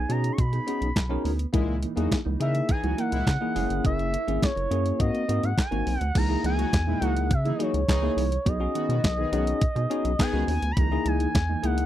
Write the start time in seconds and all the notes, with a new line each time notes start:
Already playing: G#4 G#5
0.09 B2 B3 C#4 D#4 F#4 G#4 A#5, closed hi-hat
0.24 muted clean electric guitar stroke, closed hi-hat
0.32 C#6
0.38 B2 B5, muted clean electric guitar stroke, kick, closed hi-hat
0.53 B3 D#4 G#4, closed hi-hat
0.66 B3 C#4 D#4 F#4 G#4, closed hi-hat
0.81 B1, muted clean electric guitar stroke, closed hi-hat
0.96 B1, kick, snare, clap, closed hi-hat
1.09 B3 C#4 D#4 F#4 G#4 A#4
1.24 D2 B3 D#4 G#4, open hi-hat
1.39 muted clean electric guitar stroke, closed hi-hat
1.53 C#2 A#2 E3 G#3 A#3 D#4 E4 G#4, kick, closed hi-hat
1.68 muted clean electric guitar stroke
1.82 E3 A#3 D#4, closed hi-hat
1.96 E2 E3 F#3 A#3 D#4 E4 F#4 G#4, closed hi-hat
2.11 muted clean electric guitar stroke, kick, snare, clap, closed hi-hat
2.25 C#2 E3 A#3 D#4
2.40 C#3 E3 A#3 D#4 E4 G#4 A#4 E5, closed hi-hat
2.55 muted clean electric guitar stroke, closed hi-hat
2.69 E3 D#4 G#4 G#5, muted clean electric guitar stroke, kick, closed hi-hat
2.83 C#2 E3 F#3 A#3 D#4 E4 F#4, closed hi-hat
2.97 E3 A#3 D#4 E4 A#4 F#5, closed hi-hat
3.12 C#2 A#2 G#3 E4, muted clean electric guitar stroke, closed hi-hat
3.27 C#3, kick, snare, clap, closed hi-hat
3.41 E3 A#3 D#4 E4 G#4
3.55 F#1 G#3 C#4 E4 G#4 A#4, open hi-hat
3.61 A#3
3.70 G1, muted clean electric guitar stroke, closed hi-hat
3.84 F#1 C#4 E4 A#4 E5, kick, closed hi-hat
3.99 muted clean electric guitar stroke, closed hi-hat
4.13 C#4 E4 A#4, closed hi-hat
4.27 G#1 A#3 C#4 E4 G#4 C#5, closed hi-hat
4.43 C#5, kick, snare, clap, closed hi-hat
4.56 F#1 C#4 E4 A#4, closed hi-hat
4.70 F#2 A#3 C#4 E4 G#4 A#4, closed hi-hat
4.85 muted clean electric guitar stroke, closed hi-hat
4.99 G#2 A#3 C4 D#4 F#4 D#5, muted clean electric guitar stroke, kick, closed hi-hat
5.13 C4 F#4 A#4, closed hi-hat
5.28 G#2 A#3 C4 D#4 F#4 A#4, closed hi-hat
5.43 G#2 F#5, muted clean electric guitar stroke, closed hi-hat
5.58 G#5, kick, snare, clap, closed hi-hat
5.71 G#1 A#3 C4 D#4 F#4 A#4, closed hi-hat
5.86 B1 C4 F#4 A#4, open hi-hat
6.00 D2 F#5, muted clean electric guitar stroke, closed hi-hat
6.14 C#2 E3 A#3 D#4 E4 G#4 A#5, kick, closed hi-hat, crash
6.29 A#3 D#4 E4 G#4, muted clean electric guitar stroke
6.43 C#2 E3 A#3 D#4 G#4 G#5, closed hi-hat
6.58 E3 F#3 A#3 D#4 F#4, closed hi-hat
6.73 E2, kick, snare, clap, closed hi-hat
6.87 A#2 E3 G#3 A#3 D#4 E4
7.01 C#2 E3 F#3 A#3 D#4 E4 F#4 G#4 F#5, closed hi-hat
7.16 muted clean electric guitar stroke, closed hi-hat
7.30 C#3 E5, muted clean electric guitar stroke, kick, closed hi-hat
7.45 E3 A#3 D#4 E4 G#4, closed hi-hat
7.54 D#5
7.59 E3 F#3 A#3 D#4 E4 F#4 G#4 C#5, closed hi-hat
7.74 C#2, muted clean electric guitar stroke, closed hi-hat
7.88 C#2 E3 D#4 G#4, kick, snare, clap, closed hi-hat
8.02 E3 A#3 D#4 E4 G#4
8.17 C2 E3 A#3 D#4, open hi-hat
8.31 muted clean electric guitar stroke, closed hi-hat
8.45 B1 B3 D#4 F#4 G#4 D#5, kick, closed hi-hat
8.60 C#4 D#4 F#4 G#4, muted clean electric guitar stroke
8.75 D#3 B3 D#4 F#4 G#4, closed hi-hat
8.89 B2 D#3 B3 D#4 F#4 A#4, closed hi-hat
9.03 B1, muted clean electric guitar stroke, kick, snare, clap, closed hi-hat
9.17 D#3 B3 D#4 G#4
9.32 B1 D#3 B3 C#4 D#4 F#4 G#4, closed hi-hat
9.47 muted clean electric guitar stroke, closed hi-hat
9.61 B2, muted clean electric guitar stroke, kick, closed hi-hat
9.75 B2 B3 D#4 G#4, closed hi-hat
9.90 B3 C#4 D#4 F#4 G#4, closed hi-hat
10.04 B1, muted clean electric guitar stroke, closed hi-hat
10.19 D#3 B3 G#4 G#5, kick, snare, clap, closed hi-hat
10.33 C#2 B3 C#4 D#4 F#4 G#4
10.48 D#2 B3 D#4 G#4 G#5, open hi-hat
10.62 D2, muted clean electric guitar stroke, closed hi-hat
10.71 B5
10.76 C#2 E3 A#3 D#4 E4 G#4 A#5, kick, closed hi-hat
10.91 A#3 D#4 E4 G#4, muted clean electric guitar stroke
11.05 C#2 E3 A#3 D#4 G#5, closed hi-hat
11.20 E3 A#3 D#4, closed hi-hat
11.35 E2, kick, snare, clap, closed hi-hat
11.49 E3 A#3 D#4
11.62 C#2 E3 A#3 D#4 E4 G#4 F#5, closed hi-hat
11.78 muted clean electric guitar stroke, closed hi-hat